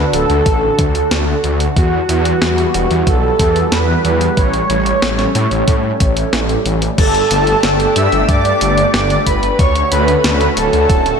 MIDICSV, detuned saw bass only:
0, 0, Header, 1, 2, 480
1, 0, Start_track
1, 0, Key_signature, 2, "major"
1, 0, Tempo, 652174
1, 1299, Time_signature, 4, 2, 24, 8
1, 8242, End_track
2, 0, Start_track
2, 0, Title_t, "Detuned saw bass"
2, 0, Program_c, 0, 39
2, 99, Note_on_c, 0, 26, 83
2, 187, Note_off_c, 0, 26, 0
2, 219, Note_on_c, 0, 38, 95
2, 307, Note_off_c, 0, 38, 0
2, 339, Note_on_c, 0, 33, 90
2, 514, Note_off_c, 0, 33, 0
2, 579, Note_on_c, 0, 38, 97
2, 754, Note_off_c, 0, 38, 0
2, 819, Note_on_c, 0, 38, 101
2, 994, Note_off_c, 0, 38, 0
2, 1059, Note_on_c, 0, 38, 88
2, 1234, Note_off_c, 0, 38, 0
2, 1299, Note_on_c, 0, 40, 100
2, 1474, Note_off_c, 0, 40, 0
2, 1538, Note_on_c, 0, 40, 97
2, 1713, Note_off_c, 0, 40, 0
2, 1779, Note_on_c, 0, 40, 87
2, 1954, Note_off_c, 0, 40, 0
2, 2020, Note_on_c, 0, 28, 81
2, 2107, Note_off_c, 0, 28, 0
2, 2140, Note_on_c, 0, 40, 93
2, 2227, Note_off_c, 0, 40, 0
2, 2259, Note_on_c, 0, 35, 90
2, 2434, Note_off_c, 0, 35, 0
2, 2499, Note_on_c, 0, 40, 102
2, 2674, Note_off_c, 0, 40, 0
2, 2739, Note_on_c, 0, 40, 97
2, 2914, Note_off_c, 0, 40, 0
2, 2979, Note_on_c, 0, 40, 89
2, 3154, Note_off_c, 0, 40, 0
2, 3219, Note_on_c, 0, 33, 97
2, 3394, Note_off_c, 0, 33, 0
2, 3458, Note_on_c, 0, 33, 101
2, 3633, Note_off_c, 0, 33, 0
2, 3699, Note_on_c, 0, 33, 90
2, 3874, Note_off_c, 0, 33, 0
2, 3938, Note_on_c, 0, 45, 86
2, 4026, Note_off_c, 0, 45, 0
2, 4059, Note_on_c, 0, 33, 91
2, 4146, Note_off_c, 0, 33, 0
2, 4179, Note_on_c, 0, 45, 77
2, 4354, Note_off_c, 0, 45, 0
2, 4419, Note_on_c, 0, 33, 80
2, 4594, Note_off_c, 0, 33, 0
2, 4659, Note_on_c, 0, 33, 93
2, 4834, Note_off_c, 0, 33, 0
2, 4900, Note_on_c, 0, 33, 82
2, 5074, Note_off_c, 0, 33, 0
2, 5139, Note_on_c, 0, 31, 100
2, 5314, Note_off_c, 0, 31, 0
2, 5380, Note_on_c, 0, 31, 97
2, 5554, Note_off_c, 0, 31, 0
2, 5619, Note_on_c, 0, 31, 89
2, 5794, Note_off_c, 0, 31, 0
2, 5859, Note_on_c, 0, 43, 86
2, 5947, Note_off_c, 0, 43, 0
2, 5979, Note_on_c, 0, 31, 98
2, 6066, Note_off_c, 0, 31, 0
2, 6099, Note_on_c, 0, 43, 80
2, 6274, Note_off_c, 0, 43, 0
2, 6340, Note_on_c, 0, 31, 80
2, 6514, Note_off_c, 0, 31, 0
2, 6579, Note_on_c, 0, 31, 97
2, 6754, Note_off_c, 0, 31, 0
2, 6819, Note_on_c, 0, 31, 85
2, 6994, Note_off_c, 0, 31, 0
2, 7059, Note_on_c, 0, 38, 100
2, 7234, Note_off_c, 0, 38, 0
2, 7301, Note_on_c, 0, 38, 98
2, 7475, Note_off_c, 0, 38, 0
2, 7541, Note_on_c, 0, 38, 85
2, 7715, Note_off_c, 0, 38, 0
2, 7780, Note_on_c, 0, 26, 89
2, 7867, Note_off_c, 0, 26, 0
2, 7899, Note_on_c, 0, 38, 93
2, 7987, Note_off_c, 0, 38, 0
2, 8019, Note_on_c, 0, 26, 79
2, 8194, Note_off_c, 0, 26, 0
2, 8242, End_track
0, 0, End_of_file